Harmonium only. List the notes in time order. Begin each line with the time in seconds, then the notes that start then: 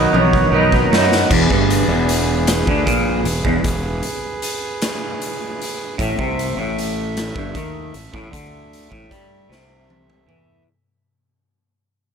Already playing: F#3 D#4
0.00 D#5
0.21 C#5
0.58 D#5
0.93 F#3 B3 D#4
1.34 G#4 B4
6.00 A3 A4 E5